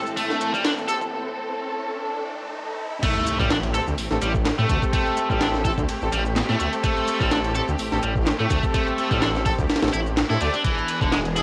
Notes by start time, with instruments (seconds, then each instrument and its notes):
Already playing: string section A2 E3 C4 A4, riser
0.06 shaker
0.17 distorted electric guitar A3, open hi-hat, shaker
0.30 snare, shaker
0.41 ride, shaker
0.53 distorted electric guitar G3, kick, shaker
0.64 distorted electric guitar D4, snare, ride, shaker
0.78 shaker
0.88 horn section C4 G4 A4, distorted electric guitar A4, kick, ride, shaker
1.01 kick, shaker
2.08 swell
3.03 string section A3 C4 G4, distorted electric guitar A3, kick, crash, ride, impact, shaker
3.16 shaker
3.27 ride, shaker
3.39 detuned saw bass A1, distorted electric guitar G3, kick, shaker
3.50 distorted electric guitar D4, snare, clap, ride, shaker
3.63 ride, shaker
3.74 horn section C4 G4 A4, distorted electric guitar A4, ride, shaker
3.87 detuned saw bass D2, shaker
3.98 detuned saw bass A1, open hi-hat, shaker
4.11 detuned saw bass A1, horn section C4 G4 A4, snare, shaker
4.22 detuned saw bass A1, distorted electric guitar G3, ride, shaker
4.35 kick, shaker
4.46 snare, clap, ride, shaker
4.59 detuned saw bass A2, distorted electric guitar A3, shaker
4.69 detuned saw bass D2, distorted electric guitar A3, kick, ride, shaker
4.82 horn section C4 G4 A4, kick, shaker
4.93 distorted electric guitar A3, kick, ride, shaker
5.07 shaker
5.17 ride, shaker
5.30 detuned saw bass A1, distorted electric guitar G3, kick, shaker
5.41 distorted electric guitar D4, snare, clap, ride, shaker
5.54 snare, shaker
5.65 horn section C4 G4 A4, distorted electric guitar A4, kick, ride, shaker
5.78 detuned saw bass D2, kick, shaker
5.89 ride, shaker
6.01 detuned saw bass A1, horn section C4 G4 A4, shaker
6.12 detuned saw bass A1, distorted electric guitar G3, ride, shaker
6.25 shaker
6.36 snare, clap, ride, shaker
6.49 detuned saw bass A2, distorted electric guitar A3, snare, shaker
6.60 detuned saw bass D2, distorted electric guitar A3, ride, shaker
6.73 horn section C4 G4 A4, ride, shaker
6.84 distorted electric guitar A3, kick, ride, shaker
6.97 shaker
7.08 ride, shaker
7.20 detuned saw bass A1, distorted electric guitar G3, kick, shaker
7.31 distorted electric guitar D4, snare, clap, ride, shaker
7.44 ride, shaker
7.55 horn section C4 G4 A4, distorted electric guitar A4, ride, shaker
7.68 detuned saw bass D2, shaker
7.79 detuned saw bass A1, open hi-hat, shaker
7.92 detuned saw bass A1, horn section C4 G4 A4, snare, shaker
8.03 detuned saw bass A1, distorted electric guitar G3, ride, shaker
8.16 kick, shaker
8.26 snare, clap, ride, shaker
8.39 detuned saw bass A2, distorted electric guitar A3, shaker
8.50 detuned saw bass D2, distorted electric guitar A3, kick, ride, shaker
8.63 horn section C4 G4 A4, kick, shaker
8.74 distorted electric guitar A3, kick, ride, shaker
8.87 shaker
8.98 ride, shaker
9.11 detuned saw bass A1, distorted electric guitar G3, kick, shaker
9.22 distorted electric guitar D4, snare, clap, ride, shaker
9.35 snare, shaker
9.46 horn section C4 G4 A4, distorted electric guitar A4, kick, ride, shaker
9.59 detuned saw bass D2, kick, shaker
9.69 snare, ride, shaker
9.76 snare, ride
9.82 detuned saw bass A1, horn section C4 G4 A4, snare, ride, shaker
9.88 snare, ride
9.93 detuned saw bass A1, distorted electric guitar E4, ride, shaker
10.06 shaker
10.17 snare, clap, ride, shaker
10.30 detuned saw bass A2, horn section C4 G4 A4, distorted electric guitar E4, snare, shaker
10.41 detuned saw bass D2, distorted electric guitar A3, horn section C4 G4 D5, ride, shaker
10.54 distorted electric guitar D4, ride, shaker
10.64 distorted electric guitar E3, string section E3 B3 D4 G#4, kick, ride, shaker
10.78 shaker
10.88 ride, shaker
11.01 detuned saw bass E1, distorted electric guitar D3, kick, shaker
11.12 distorted electric guitar G#3, snare, clap, ride, shaker
11.25 ride, shaker
11.36 horn section D4 E4 G#4, distorted electric guitar E4, ride, shaker